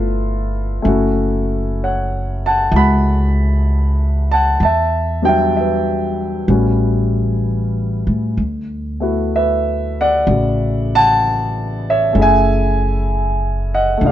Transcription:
Already playing: G1 A3 B3 E4 F4 B4 E5
0.82 F#1 A3 C#4 E4
0.88 F#4
1.84 C#5 F#5
2.46 F#5 A5
2.71 C#2 E4 F#4
2.76 F#5 B5
4.32 F#5 A5
4.60 E2 A5
4.65 E5
5.22 F#3 G3 B3 D4 G5
5.29 E5
5.57 B4 E5
6.48 A1 G3 B3 C#4 F#4
8.07 A2
8.37 D2
9.00 A3 B3 E4 F#4
9.36 B4 E5
10.01 D5 F#5
10.27 A1 C#3 F#4
10.95 F#5 A5
11.90 C#5 E5
12.13 F#1 A3 C#4 E4
12.18 G#4 E5 G#5
13.74 D#5 F#5
13.97 F1 A3
14.01 D4 D#4
14.06 G4 D5 F5

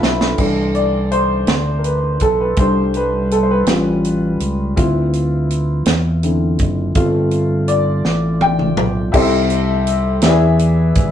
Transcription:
Already playing: G2 E4 F4 A4 B4 G5 B5
0.02 B1 E5, snare
0.21 snare
0.38 C2 E3 A3 D4, kick, crash
0.75 D5, closed hi-hat
1.12 C5, closed hi-hat
1.47 D2, snare, closed hi-hat
1.78 A#4
1.84 B4, closed hi-hat
2.20 B1 A4, kick, closed hi-hat
2.41 B4
2.56 C2 G3 A3 D4 C5, kick, closed hi-hat
2.94 B4, closed hi-hat
3.31 A4, closed hi-hat
3.43 C5
3.51 B4
3.66 A1 G3 C#4 F4, snare, closed hi-hat
4.04 closed hi-hat
4.40 C#2, closed hi-hat
4.76 D2 C4 E4 F4, kick, closed hi-hat
5.13 closed hi-hat
5.50 closed hi-hat
5.85 E2, snare, closed hi-hat
6.23 D3 C4 E4, closed hi-hat
6.59 F#1, kick, closed hi-hat
6.95 G1 A3 C4 F4, kick, closed hi-hat
7.31 closed hi-hat
7.68 D5, closed hi-hat
8.04 A1, snare
8.41 G5, high tom
8.59 mid tom
8.77 B1, mid tom
9.12 C2 C3 E4 G4 A4 C5 D#5, kick, crash
9.22 E5
9.50 closed hi-hat
9.87 closed hi-hat
10.21 E2 E3 E4 G4 B4 D5, snare, closed hi-hat
10.26 E5
10.30 G#4
10.59 closed hi-hat
10.95 G#1, kick, closed hi-hat

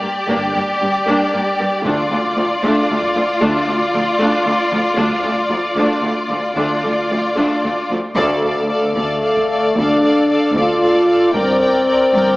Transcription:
Already playing: G4 D5
0.01 G2 G3 A#3
0.27 G1 G2 A#3 D4
0.54 G2 A#3
0.80 G2 G3 A#3
1.06 G2 A#3 D4
1.32 G2 A#3
1.59 G2 G3 A#3
1.85 D2 A3 D4 F4 D5, taiko
2.11 D2 A3
2.36 D2 F3 A3
2.63 D2 A3 D4
2.90 D2 A3
3.03 taiko
3.15 D2 F3 A3
3.41 D2 A3 D4
3.67 D2 A3
3.94 D2 F3 A3
4.18 D2 A3 D4
4.45 D2 A3
4.72 D2 F3 A3
4.98 D2 A3 D4, taiko
5.24 D2 A3
5.49 D2 F3 A3
5.76 D2 A3 D4
6.02 D2 A3
6.29 D2 F3 A3
6.56 D2 A3 D4 F4 D5
6.83 D2 A3
7.10 D2 F3 A3
7.36 D2 A3 D4
7.63 D2 A3
7.90 D2 F3 A3
8.16 D2 A3 A4 D5 F5, taiko
8.43 A4 D5 F5
8.68 A4 D5 F5
8.95 D2 A4 D5 F5
9.22 A4 D5 F5
9.37 taiko
9.50 A4 D5 F5
9.76 D2 D4 A4 D5 F5
10.03 A4 D5 F5
10.29 A4 D5 F5
10.55 D2 F4 A4 D5 F5
10.82 A4 D5 F5
11.07 A4 D5 F5
11.33 G1 G2 C4 A#4 D5 G5, taiko
11.60 A#4 D5 G5
11.87 A#4 D5 G5
12.13 G1 G2 A#4 D5 G5

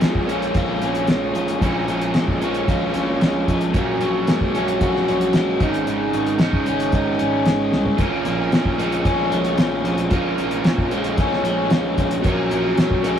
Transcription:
Already playing: A#2 F3 A#3 C#4
0.01 A#2 G#3, snare, closed hi-hat
0.15 kick
0.26 A#1 A#2 F3 A#3 C#4, closed hi-hat
0.42 closed hi-hat
0.54 A#1 F4, kick, closed hi-hat
0.82 A#1 C#4, closed hi-hat
0.95 closed hi-hat
1.07 A#1 G#3, snare, closed hi-hat
1.34 A#1 F3, closed hi-hat
1.48 closed hi-hat
1.61 A#1 A#2 F3 A#3 C#4, kick, closed hi-hat
1.88 A#1 F3, closed hi-hat
2.01 closed hi-hat
2.14 A#2 G#3, snare, closed hi-hat
2.28 kick
2.40 A#1 A#2 F3 A#3 C#4, closed hi-hat
2.54 closed hi-hat
2.68 A#1 F4, kick, closed hi-hat
2.94 A#1 C#4, closed hi-hat
3.20 A#1 G#3, snare, closed hi-hat
3.48 A#1 F3, kick, closed hi-hat
3.61 closed hi-hat
3.73 A#1 A#2 F#3 A#3 C#4, kick, closed hi-hat
4.01 A#1 F#3, closed hi-hat
4.27 A#2 G#3, snare, closed hi-hat
4.41 kick
4.53 A#1 A#2 F#3 A#3 C#4, closed hi-hat
4.68 closed hi-hat
4.80 A#1 F#4, kick, closed hi-hat
4.95 snare
5.08 A#1 C#4, closed hi-hat
5.21 closed hi-hat
5.33 A#1 G#3, snare, closed hi-hat
5.60 G#1 G#2 C#3 G#3 C#4 D#4, kick, closed hi-hat
5.74 closed hi-hat
5.87 G#1 G#2, closed hi-hat
6.13 G#1 C#3, closed hi-hat
6.26 closed hi-hat
6.38 G#2 C#3 G#3 C#4 D#4, snare, closed hi-hat
6.53 kick
6.66 G#1 C#4, closed hi-hat
6.80 closed hi-hat
6.92 G#1 D#4, kick, closed hi-hat
7.19 G#1 C#4, closed hi-hat
7.46 G#1 G#3, snare, closed hi-hat
7.72 C2 C#3, snare
7.85 floor tom
7.97 A#1 A#2 F3 A#3 C#4, kick, closed hi-hat
8.25 A#1 A#2, closed hi-hat
8.52 A#2 F3, snare, closed hi-hat
8.65 kick
8.78 A#1 A#2 F3 G#3 A#3 C#4, closed hi-hat
8.92 closed hi-hat
9.05 A#1 C#4, kick, closed hi-hat
9.31 A#1 G#3, closed hi-hat
9.45 closed hi-hat
9.57 A#1 F3, snare, closed hi-hat
9.84 A#1 A#2, closed hi-hat
9.98 closed hi-hat
10.10 A#1 A#2 F3 A#3 C#4, kick, closed hi-hat
10.38 A#1 A#2, closed hi-hat
10.51 closed hi-hat
10.63 A#2 F3, snare, closed hi-hat
10.78 kick
10.90 A#1 A#2 F3 G#3 A#3 C#4, closed hi-hat
11.04 closed hi-hat
11.18 A#1 C#4, kick, closed hi-hat
11.33 snare
11.44 A#1 G#3, closed hi-hat
11.70 A#1 F3, snare, closed hi-hat
11.98 A#1 A#2, kick, closed hi-hat
12.11 closed hi-hat
12.22 A#1 A#2 F#3 A#3 C#4, kick, closed hi-hat
12.51 A#1 A#2, closed hi-hat
12.77 A#2 F#3, snare, closed hi-hat
12.91 kick
13.03 A#1 A#2 F#3 G#3 A#3 C#4, closed hi-hat

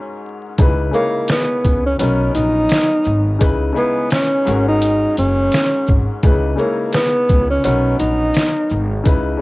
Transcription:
Already playing: G#2 G#3 C#4 F#4 A#4
0.58 C#2 C#3 G#3 D#4 E4 B4, kick, closed hi-hat, shaker
0.91 C#3 G#3 A#3 D#4 E4 C#5, shaker
1.28 B3, snare, closed hi-hat, shaker
1.64 C#2, kick, closed hi-hat, shaker
1.86 C#4
1.99 B1 F#3 B3 C#4 D#4 A#4, closed hi-hat, shaker
2.35 A#1 D#4, closed hi-hat, shaker
2.69 snare, closed hi-hat, shaker
3.05 G#1, shaker
3.39 C#2 C#3 G#3 D#4 E4 B4, kick, closed hi-hat, shaker
3.73 C#3 G#3 D#4 E4 G#4, shaker
3.77 B3
4.10 C#4, snare, closed hi-hat, shaker
4.45 G#1 G#2 G#3 C#4 F#4 A#4, closed hi-hat, shaker
4.68 D#4
4.82 closed hi-hat, shaker
5.17 F#1 C#4, closed hi-hat, shaker
5.52 snare, closed hi-hat, shaker
5.87 G#1, kick, shaker
6.23 C#2 C#3 G#3 D#4 E4 B4, kick, closed hi-hat, shaker
6.56 C#3 G#3 A#3 D#4 E4 C#5, shaker
6.93 B3, snare, closed hi-hat, shaker
7.29 C#2, kick, closed hi-hat, shaker
7.50 C#4
7.64 B1 F#3 B3 C#4 D#4 A#4, closed hi-hat, shaker
7.99 A#1 D#4, closed hi-hat, shaker
8.34 snare, closed hi-hat, shaker
8.69 G#1, shaker
9.04 C#2 C#3 G#3 D#4 E4 B4, kick, closed hi-hat, shaker
9.37 C#3 G#3

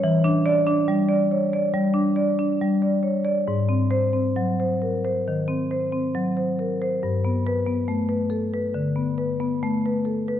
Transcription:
0.04 E3
0.24 D4
0.46 D5
0.67 D4
0.88 G3
1.09 D5
1.31 C#5
1.53 D5
1.74 G3
1.94 D4
2.16 D5
2.39 D4
2.61 G3
2.82 D5
3.03 C#5
3.25 D5
3.48 G#2
3.69 C4
3.91 C5
4.13 C4
4.36 F#3
4.60 C5
4.82 A#4
5.05 C5
5.28 D#3
5.48 C4
5.71 C5
5.93 C4
6.15 F#3
6.37 C5
6.59 A#4
6.82 C5
7.03 G2
7.25 B3
7.47 B4
7.66 B3
7.88 A3
8.09 B4
8.30 A4
8.54 B4
8.74 D3
8.96 B3
9.18 B4
9.40 B3
9.63 A3
9.86 B4
10.05 A4
10.28 B4

